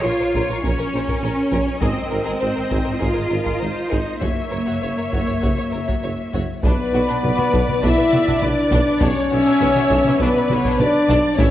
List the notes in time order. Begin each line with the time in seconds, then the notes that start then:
Already playing: C#5
0.04 A#1 F4 A#4 C#5
0.19 A#1 A#4 C5
0.34 A#1 A#4 C#5, taiko
0.49 A#1 A#4 C#5
0.63 A#1 C#4 A#4, taiko
0.78 A#1 A#4 C#5
0.93 A#1 A#4 C5
1.08 A#1 A#4, taiko
1.22 A#1 A#4 C#5
1.51 A#1 A#4 C#5, taiko
1.81 G#1 C4 G#4 A#4 D#5, taiko
2.11 G#1 A#4
2.24 G#1 G#4 A#4
2.40 G#1 A#4 C5
2.55 G#1 A#4
2.70 G#1 G#4 A#4, taiko
2.84 G#1 A#4 C5
2.99 G#1 F4 G#4 A#4, taiko
3.14 G#1 A#4 C5
3.30 G#1 A#4
3.44 G#1 G#4 A#4, taiko
3.59 G#1 A#4 C5
3.89 G#1 D#4 G#4 A#4, taiko
4.21 F#1 A#3 F#4 C#5 E5, taiko
4.51 F#1 A#4 C#5
4.66 F#1 F#4 C#5
4.82 F#1 C#5
4.97 F#1 A#4 C#5
5.13 F#1 F#4 C#5, taiko
5.26 F#1 C#5
5.42 F#1 F#4 C#5, taiko
5.57 F#1 C#5
5.72 F#1 A#4 C#5
5.87 F#1 F#4 C#5, taiko
6.03 F#1 C#5
6.33 F#1 F#4 C#5, taiko
6.63 B1 B2 D4 B4 D5, taiko
6.67 B3
6.93 B1 B2 F#4
7.08 B2 D4
7.23 B1 B2 B4, taiko mid
7.37 B2 F#4, taiko mid
7.52 B1 B2 D4, taiko
7.67 B2 B4, taiko mid
7.82 B1 B2 D4 E4 D5 E5, taiko
7.97 B2 B4
8.13 B1 B2 F#4, taiko mid
8.27 B2 D4, taiko
8.42 B1 B2 D4 B4 D5, taiko mid
8.71 B1 B2 D4, taiko
9.01 B1 B2 C#4 D4 C#5, taiko
9.31 B1 B2 F#4 E5
9.46 B2 D4
9.60 B1 B2 B4, taiko mid
9.76 B2 F#4, taiko mid
9.90 B1 B2 D4, taiko
10.04 B2 B4, taiko mid
10.20 B1 B2 B3 D4 B4 D5, taiko
10.35 B2 B4
10.50 B1 B2 F#4 C#5, taiko mid
10.64 B2 D4, taiko
10.79 B1 B2 D4 B4 D5, taiko mid
11.08 B1 B2 D4 D5, taiko
11.36 A1 A2 C#4 E4 C#5 E5, taiko
11.40 E5